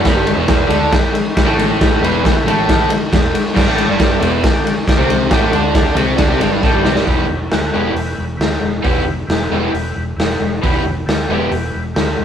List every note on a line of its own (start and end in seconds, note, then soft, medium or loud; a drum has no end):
0.05 0.13 E1 medium
0.05 0.15 E2 medium
0.05 0.15 E3 loud
0.05 0.36 E4 loud
0.05 0.36 B4 loud
0.05 kick loud
0.05 snare loud
0.05 ride loud
0.09 0.37 G4 loud
0.14 0.35 G1 medium
0.14 0.36 G2 medium
0.14 0.37 G3 loud
0.27 ride medium
0.36 0.67 E1 medium
0.36 0.69 E2 medium
0.36 0.69 E3 loud
0.48 0.79 E4 medium
0.48 0.79 G4 medium
0.48 0.79 B4 loud
0.48 kick loud
0.48 snare loud
0.48 ride loud
0.67 0.89 D2 medium
0.67 0.90 D3 medium
0.67 0.90 D4 loud
0.67 ride medium
0.90 1.21 E4 medium
0.90 1.21 G4 medium
0.90 1.22 B4 loud
0.90 kick loud
0.90 snare loud
0.90 ride loud
1.15 ride medium
1.35 1.66 E4 loud
1.35 1.66 G4 medium
1.35 1.66 B4 loud
1.35 kick loud
1.35 snare loud
1.35 ride loud
1.45 1.97 A1 loud
1.45 2.00 A2 loud
1.45 2.01 A3 loud
1.59 ride medium
1.81 2.11 E4 loud
1.81 2.11 G4 loud
1.81 2.11 B4 loud
1.81 kick loud
1.81 snare loud
1.81 ride loud
2.01 2.32 E1 loud
2.01 2.32 E2 loud
2.01 2.34 E3 loud
2.01 ride medium
2.24 2.54 E4 medium
2.24 2.55 G4 medium
2.24 2.55 B4 loud
2.24 kick loud
2.24 snare loud
2.24 ride loud
2.33 muted overdriven electric guitar stroke medium
2.44 2.85 A1 loud
2.44 2.89 A2 medium
2.44 ride medium
2.48 2.90 A3 medium
2.69 2.99 E4 loud
2.69 2.98 G4 medium
2.69 2.99 B4 loud
2.69 kick loud
2.69 snare loud
2.69 ride loud
2.90 muted overdriven electric guitar stroke medium
2.90 ride medium
3.13 3.33 E1 medium
3.13 3.30 E2 medium
3.13 3.43 E4 loud
3.13 3.43 G4 medium
3.13 3.43 B4 loud
3.13 kick loud
3.13 snare loud
3.13 ride loud
3.35 ride medium
3.54 3.65 G1 medium
3.54 3.65 G2 loud
3.54 3.66 G3 loud
3.54 3.86 D4 loud
3.54 3.86 G4 loud
3.54 3.86 D5 loud
3.54 kick loud
3.54 snare loud
3.54 crash loud
3.66 3.86 A1 loud
3.66 3.88 A2 medium
3.66 3.88 A3 loud
3.78 ride medium
3.88 4.18 G1 medium
3.88 4.20 G2 medium
3.88 4.20 G3 medium
4.00 4.31 D4 loud
4.00 kick loud
4.00 snare loud
4.00 ride loud
4.04 4.32 G4 medium
4.04 4.32 D5 loud
4.20 4.41 E1 medium
4.20 4.42 E2 medium
4.20 4.42 E3 loud
4.20 ride medium
4.44 4.74 D4 loud
4.44 4.75 G4 medium
4.44 4.75 D5 loud
4.44 kick loud
4.44 snare loud
4.44 ride loud
4.67 ride medium
4.87 5.17 D4 loud
4.87 5.18 G4 loud
4.87 5.18 D5 loud
4.87 kick loud
4.87 snare loud
4.87 ride loud
4.97 5.28 C2 loud
4.97 5.30 C3 loud
4.97 5.30 C4 loud
5.10 ride medium
5.31 5.51 A1 loud
5.31 5.51 A2 medium
5.31 5.52 A3 loud
5.31 5.62 D4 loud
5.31 5.62 G4 loud
5.31 5.62 D5 loud
5.31 kick loud
5.31 snare loud
5.31 ride loud
5.52 5.94 D2 loud
5.52 5.95 D3 medium
5.52 5.96 D4 loud
5.52 ride medium
5.75 6.05 D4 medium
5.75 6.06 G4 medium
5.75 6.07 D5 loud
5.75 kick loud
5.75 snare loud
5.75 ride loud
5.95 6.16 C2 medium
5.95 6.17 C3 medium
5.95 6.18 C4 loud
5.95 ride medium
6.17 6.29 D2 loud
6.17 6.28 D3 medium
6.17 6.29 D4 medium
6.17 6.50 D4 medium
6.17 6.51 D5 loud
6.17 kick loud
6.17 snare loud
6.17 ride loud
6.22 6.51 G4 medium
6.29 6.39 C2 loud
6.29 6.40 C3 medium
6.29 6.40 C4 medium
6.40 6.61 G1 loud
6.40 6.61 G2 loud
6.40 6.62 G3 loud
6.40 ride medium
6.62 6.72 A1 medium
6.62 6.73 A2 loud
6.62 6.73 A3 loud
6.62 6.94 D4 loud
6.62 6.95 G4 medium
6.62 7.05 G5 medium
6.62 kick loud
6.62 snare medium
6.67 6.95 D5 loud
6.73 6.84 G1 loud
6.73 6.84 G2 medium
6.73 6.85 G3 loud
6.84 6.95 C2 medium
6.84 6.95 C3 medium
6.84 6.95 C4 loud
6.84 snare loud
6.95 7.06 G1 medium
6.95 7.05 G2 medium
6.95 7.05 G3 medium
6.95 snare medium
7.04 7.25 E1 medium
7.04 7.23 E3 medium
7.04 7.24 B3 medium
7.04 7.24 E4 medium
7.04 7.25 G4 medium
7.04 kick loud
7.04 open hi-hat medium
7.08 7.38 E4 medium
7.08 7.39 G4 medium
7.08 7.39 B4 medium
7.29 7.47 E1 medium
7.49 7.69 D2 medium
7.49 7.81 E4 medium
7.49 7.82 G4 medium
7.49 7.82 B4 medium
7.49 snare loud
7.49 open hi-hat medium
7.74 7.92 E1 medium
7.74 7.91 E3 medium
7.74 7.92 B3 medium
7.74 7.92 E4 medium
7.74 7.92 G4 medium
7.93 8.13 E1 medium
7.93 8.25 E4 medium
7.93 8.25 G4 medium
7.93 8.26 B4 medium
7.93 open hi-hat medium
8.18 8.36 E1 medium
8.37 8.57 D2 medium
8.37 8.69 E4 medium
8.37 8.70 G4 medium
8.37 8.69 B4 medium
8.37 snare loud
8.37 open hi-hat medium
8.61 8.79 E1 medium
8.81 9.02 E1 medium
8.81 9.01 E3 medium
8.81 9.02 B3 medium
8.81 9.14 E4 medium
8.81 9.02 E4 medium
8.81 9.14 G4 medium
8.81 9.15 B4 medium
8.81 kick loud
8.81 open hi-hat medium
8.86 9.03 G4 medium
9.04 9.23 E1 medium
9.27 9.46 E1 medium
9.27 9.59 E4 medium
9.27 9.59 G4 medium
9.27 9.59 B4 medium
9.27 snare loud
9.27 open hi-hat medium
9.51 9.69 E1 medium
9.51 9.69 E3 medium
9.51 9.70 B3 medium
9.51 9.70 E4 medium
9.51 9.70 G4 medium
9.71 9.91 E1 medium
9.71 10.04 E4 medium
9.71 10.03 G4 medium
9.71 10.04 B4 loud
9.71 open hi-hat medium
9.96 10.14 E1 medium
10.16 10.35 E1 medium
10.16 10.48 E4 medium
10.16 10.49 G4 medium
10.16 10.50 B4 medium
10.16 snare loud
10.16 open hi-hat medium
10.40 10.58 E1 medium
10.62 10.81 E1 medium
10.62 10.80 E3 loud
10.62 10.81 B3 medium
10.62 10.81 E4 loud
10.62 10.94 E4 medium
10.62 10.94 G4 medium
10.62 10.81 G4 loud
10.62 10.95 B4 medium
10.62 kick loud
10.62 open hi-hat medium
10.84 11.03 E1 medium
11.06 11.25 D2 medium
11.06 11.38 E4 medium
11.06 11.38 G4 medium
11.06 11.38 A4 loud
11.06 snare loud
11.06 open hi-hat medium
11.29 11.47 E1 medium
11.29 11.48 E3 medium
11.29 11.48 B3 medium
11.29 11.48 E4 medium
11.33 11.49 G4 medium
11.51 11.69 E1 medium
11.51 11.83 E4 medium
11.51 11.83 G4 medium
11.51 11.84 B4 loud
11.51 open hi-hat medium
11.75 11.93 E1 medium
11.94 12.14 D2 medium
11.94 12.25 E4 medium
11.94 12.25 G4 medium
11.94 12.25 B4 medium
11.94 snare loud
11.94 open hi-hat medium
12.18 12.25 E1 medium